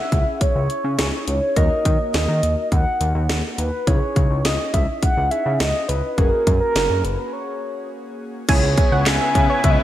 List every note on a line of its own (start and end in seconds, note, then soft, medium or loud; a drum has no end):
0.00 0.95 C#4 medium
0.00 0.95 E4 medium
0.00 0.95 G#4 medium
0.00 0.41 E5 loud
0.12 0.25 C#2 medium
0.12 kick medium
0.12 closed hi-hat medium
0.41 1.24 C#5 loud
0.41 kick medium
0.41 closed hi-hat medium
0.55 0.68 C#2 medium
0.70 closed hi-hat medium
0.84 0.97 C#3 medium
0.99 1.12 C#2 loud
0.99 1.56 C#4 soft
0.99 1.55 D#4 soft
0.99 1.56 E4 soft
0.99 1.57 G#4 medium
0.99 snare loud
0.99 closed hi-hat medium
1.28 1.40 C#2 medium
1.28 1.58 C#5 medium
1.28 closed hi-hat medium
1.56 1.69 D#2 loud
1.56 3.83 A#3 medium
1.56 3.83 D#4 medium
1.56 3.83 F#4 medium
1.56 3.83 A#4 medium
1.56 2.14 D#5 loud
1.56 kick loud
1.56 closed hi-hat medium
1.85 1.98 D#3 medium
1.85 kick loud
1.85 closed hi-hat medium
2.14 2.27 D#2 loud
2.14 2.68 D#5 medium
2.14 snare loud
2.14 closed hi-hat medium
2.29 2.41 D#3 loud
2.43 2.56 D#2 loud
2.43 closed hi-hat medium
2.72 2.85 D#2 loud
2.72 3.26 F#5 medium
2.72 kick medium
2.72 closed hi-hat medium
3.01 3.13 D#2 loud
3.01 closed hi-hat medium
3.15 3.28 D#2 loud
3.29 3.42 D#2 loud
3.29 snare loud
3.29 closed hi-hat medium
3.58 3.71 D#2 loud
3.58 3.88 B4 medium
3.58 closed hi-hat medium
3.87 4.00 C#2 loud
3.87 5.29 C#4 medium
3.87 5.29 D#4 medium
3.87 5.28 E4 medium
3.87 5.29 G#4 medium
3.87 4.46 C#5 loud
3.87 kick loud
3.87 closed hi-hat medium
4.16 4.29 C#2 loud
4.16 kick loud
4.16 closed hi-hat medium
4.30 4.43 C#2 loud
4.45 4.58 C#2 loud
4.45 4.73 D#5 loud
4.45 snare loud
4.45 closed hi-hat medium
4.73 4.87 C#2 medium
4.73 4.86 E5 loud
4.73 kick medium
4.73 closed hi-hat medium
5.02 5.32 F#5 loud
5.02 kick medium
5.02 closed hi-hat medium
5.17 5.30 C#2 loud
5.31 6.17 C#4 soft
5.31 6.18 D#4 soft
5.31 6.18 E4 soft
5.31 6.17 G#4 medium
5.31 5.59 E5 loud
5.31 closed hi-hat medium
5.46 5.59 C#3 loud
5.60 5.73 C#2 loud
5.60 5.90 D#5 loud
5.60 snare loud
5.60 closed hi-hat medium
5.88 6.02 C#2 loud
5.88 6.19 B4 medium
5.88 closed hi-hat medium
6.17 6.31 F#1 loud
6.17 8.45 A#3 medium
6.17 8.45 C#4 medium
6.17 8.45 F#4 medium
6.17 8.45 G#4 medium
6.17 6.60 A#4 loud
6.17 kick loud
6.17 closed hi-hat medium
6.47 6.60 F#2 loud
6.47 kick medium
6.47 closed hi-hat medium
6.60 7.05 A#4 medium
6.75 6.88 F#1 loud
6.75 snare loud
6.75 closed hi-hat medium
6.90 7.03 F#2 medium
7.04 7.17 F#1 medium
7.04 7.34 B4 medium
7.04 closed hi-hat medium
7.33 7.91 C#5 medium
8.49 8.61 C#2 loud
8.49 9.83 C#3 medium
8.49 9.83 G#3 medium
8.49 9.83 B3 medium
8.49 9.83 C#4 medium
8.49 9.83 E4 medium
8.49 9.83 G#4 medium
8.49 9.08 C#5 loud
8.49 8.57 G#5 loud
8.49 kick loud
8.49 closed hi-hat medium
8.49 crash loud
8.63 8.76 C#2 loud
8.78 kick loud
8.78 closed hi-hat medium
8.92 9.05 C#2 medium
8.92 9.01 F#5 medium
9.06 9.19 C#2 loud
9.06 9.66 G#5 loud
9.06 snare loud
9.06 clap loud
9.06 closed hi-hat medium
9.21 9.29 E5 medium
9.35 9.48 C#3 loud
9.35 kick medium
9.35 closed hi-hat medium
9.50 9.58 C#5 medium
9.64 9.77 C#2 loud
9.64 9.72 E5 loud
9.64 kick medium
9.64 closed hi-hat medium
9.71 9.80 D#5 medium
9.78 9.83 E5 loud